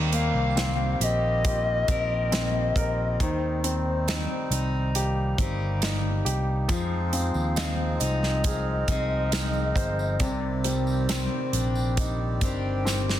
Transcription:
0.00 0.30 D#2 medium
0.00 3.16 D#3 medium
0.00 3.19 D#3 medium
0.00 1.40 G3 medium
0.00 6.64 G3 medium
0.00 0.57 A#3 soft
0.00 3.16 A#3 medium
0.00 4.90 C4 medium
0.00 1.00 D#4 soft
0.00 1.01 G4 medium
0.00 1.42 G4 medium
0.12 1.84 A#3 soft
0.12 0.97 F5 loud
0.12 closed hi-hat medium
0.34 0.96 C2 medium
0.56 2.28 C4 soft
0.56 1.89 C4 medium
0.56 snare medium
0.56 closed hi-hat medium
1.00 1.84 A#1 medium
1.00 1.90 G4 medium
1.00 3.17 D#5 loud
1.00 closed hi-hat medium
1.44 3.19 F4 medium
1.44 3.16 G4 medium
1.44 kick medium
1.44 closed hi-hat medium
1.88 2.72 A#1 medium
1.88 4.07 C4 medium
1.88 4.51 G4 medium
1.88 3.30 A#4 medium
1.88 kick medium
1.88 closed hi-hat medium
2.32 3.17 C4 medium
2.32 snare medium
2.32 closed hi-hat medium
2.76 3.19 A#4 medium
2.76 kick medium
2.76 closed hi-hat medium
3.20 4.25 D#2 loud
3.20 6.73 D#3 medium
3.20 6.66 D#3 medium
3.20 10.16 D#4 medium
3.20 3.62 C5 loud
3.20 kick medium
3.20 closed hi-hat medium
3.64 5.34 C4 soft
3.64 4.48 C5 medium
3.64 closed hi-hat medium
4.08 5.39 C4 medium
4.08 5.78 D#4 medium
4.08 snare loud
4.08 closed hi-hat medium
4.50 5.34 C2 medium
4.50 5.39 D#4 medium
4.50 closed hi-hat medium
4.94 6.67 A#3 medium
4.94 6.23 G4 medium
4.94 closed hi-hat medium
5.38 6.21 G1 medium
5.38 7.56 C4 medium
5.38 8.01 D#4 medium
5.38 6.79 G4 medium
5.38 kick medium
5.38 closed hi-hat medium
5.82 6.66 D#4 medium
5.82 snare loud
5.82 closed hi-hat medium
6.25 6.66 C2 medium
6.25 6.67 G4 medium
6.25 closed hi-hat medium
6.68 7.31 F2 loud
6.68 10.16 F3 medium
6.68 10.20 F3 medium
6.68 10.16 G#3 medium
6.68 13.20 C4 medium
6.68 8.42 G#4 medium
6.68 kick medium
6.68 closed hi-hat medium
6.68 tambourine soft
7.13 8.84 C4 soft
7.13 8.01 F5 loud
7.13 closed hi-hat medium
7.13 tambourine soft
7.34 7.96 D#2 medium
7.34 tambourine soft
7.56 8.88 C4 medium
7.56 9.28 D#4 medium
7.56 snare loud
7.56 closed hi-hat medium
7.56 tambourine medium
8.00 8.84 C2 medium
8.00 8.88 D#4 medium
8.00 10.21 D#5 loud
8.00 closed hi-hat medium
8.00 tambourine soft
8.23 snare soft
8.44 10.17 G#4 medium
8.44 10.18 A#4 medium
8.44 kick loud
8.44 closed hi-hat loud
8.44 tambourine soft
8.88 9.72 C2 medium
8.88 11.10 C4 medium
8.88 11.53 D#4 medium
8.88 10.30 G#4 medium
8.88 kick medium
8.88 closed hi-hat medium
8.88 tambourine soft
9.32 10.18 D#4 medium
9.32 snare loud
9.32 closed hi-hat medium
9.32 tambourine medium
9.53 tambourine soft
9.75 10.17 G1 medium
9.75 10.19 C5 medium
9.75 kick medium
9.75 closed hi-hat medium
9.75 tambourine soft
9.99 tambourine soft
10.20 11.27 C2 medium
10.20 13.20 C3 medium
10.20 13.20 D#3 medium
10.20 13.20 G3 medium
10.20 13.20 G4 medium
10.20 10.65 D5 loud
10.20 13.20 D5 medium
10.20 kick medium
10.20 closed hi-hat medium
10.20 tambourine soft
10.64 12.38 G3 soft
10.64 11.53 C5 medium
10.64 closed hi-hat medium
10.64 tambourine soft
10.87 tambourine soft
11.09 12.42 C4 medium
11.09 12.83 C4 medium
11.09 snare loud
11.09 closed hi-hat medium
11.09 tambourine medium
11.53 12.41 A#1 medium
11.53 12.43 D4 medium
11.53 closed hi-hat medium
11.53 tambourine soft
11.75 tambourine soft
11.97 13.20 D#4 medium
11.97 kick medium
11.97 closed hi-hat medium
11.97 tambourine soft
12.41 13.20 G1 medium
12.41 13.20 C4 medium
12.41 13.20 D4 medium
12.41 13.20 G4 medium
12.41 kick medium
12.41 closed hi-hat medium
12.41 tambourine soft
12.85 13.20 C4 soft
12.85 snare medium
12.85 tambourine medium
13.09 snare medium
13.09 tambourine soft

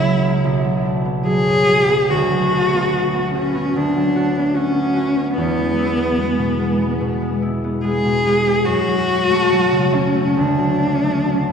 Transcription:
0.00 0.48 C#2 medium
0.00 0.48 C#3 soft
0.00 0.64 F#3 soft
0.00 0.21 A#3 soft
0.00 0.47 C#4 soft
0.00 0.86 E4 medium
0.23 0.47 A#3 soft
0.44 2.14 B1 medium
0.65 1.25 F#3 soft
0.85 4.75 D4 soft
1.05 1.87 B3 soft
1.26 1.67 F#3 soft
1.26 2.12 G#4 medium
1.47 2.14 F#2 soft
1.68 2.30 F#3 soft
1.88 2.72 B3 soft
2.10 3.75 D2 medium
2.10 3.34 F#4 medium
2.31 3.95 F#3 soft
2.52 2.92 F#4 soft
2.73 3.13 B3 soft
2.93 3.34 F#4 medium
3.14 3.53 B3 soft
3.35 3.78 C#4 medium
3.35 4.15 F#4 soft
3.55 4.36 B3 soft
3.76 5.40 D2 soft
3.76 4.56 D4 medium
3.96 5.40 F#3 soft
4.16 4.55 F#4 soft
4.37 4.74 B3 soft
4.55 5.36 C#4 medium
4.55 4.95 F#4 medium
4.75 5.15 B3 soft
4.96 5.40 F#4 soft
5.16 5.97 B3 soft
5.37 8.71 E2 medium
5.37 7.39 B3 medium
5.58 6.17 G#3 soft
5.79 7.41 E4 soft
5.98 6.80 B3 soft
6.19 6.57 G#3 soft
6.38 7.00 B2 soft
6.59 7.21 G#3 soft
6.81 7.63 B3 soft
7.01 8.04 B2 soft
7.22 7.83 G#3 soft
7.42 8.70 E4 soft
7.64 8.45 B3 soft
7.84 8.25 G#3 soft
7.84 8.67 G#4 medium
8.05 8.70 B2 soft
8.26 8.70 G#3 soft
8.46 8.70 B3 soft
8.65 10.40 F#2 medium
8.65 9.96 F#4 medium
8.88 9.51 F#3 soft
9.09 10.41 C#4 soft
9.30 10.14 A3 soft
9.52 9.93 F#3 soft
9.72 10.40 C#3 soft
9.94 10.58 F#3 soft
9.94 10.38 C#4 medium
10.15 11.02 A3 soft
10.37 11.52 D2 soft
10.37 11.52 D4 medium
10.59 11.24 F#3 soft
10.81 11.52 D4 soft
11.04 11.52 A3 soft
11.25 11.52 F#3 soft
11.49 11.52 A2 soft

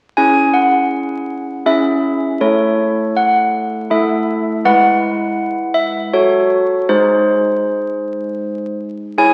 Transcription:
0.17 1.63 C#4 soft
0.17 1.63 E4 soft
0.17 1.63 G#4 soft
0.17 0.53 G#5 medium
0.54 1.62 F#5 medium
1.66 2.39 C#4 soft
1.66 2.39 E4 soft
1.66 2.39 G#4 soft
1.66 2.38 E5 medium
2.41 3.87 A3 soft
2.41 3.87 E4 soft
2.41 3.87 A4 soft
2.41 3.14 C#5 medium
3.17 3.88 F#5 medium
3.90 4.62 A3 soft
3.90 4.62 E4 soft
3.90 4.62 A4 soft
3.90 4.61 E5 medium
4.65 6.09 G#3 soft
4.65 6.09 E4 soft
4.65 6.09 B4 soft
4.65 5.72 F#5 medium
5.74 6.11 E5 medium
6.13 6.86 F#4 medium
6.13 6.86 A4 soft
6.13 6.85 C#5 medium
6.89 9.13 G#3 soft
6.89 9.13 D#4 soft
6.89 9.13 G#4 soft
6.89 8.75 C5 medium
9.18 9.34 E4 soft
9.18 9.34 G#4 soft
9.18 9.34 C#5 soft
9.18 9.34 G#5 medium

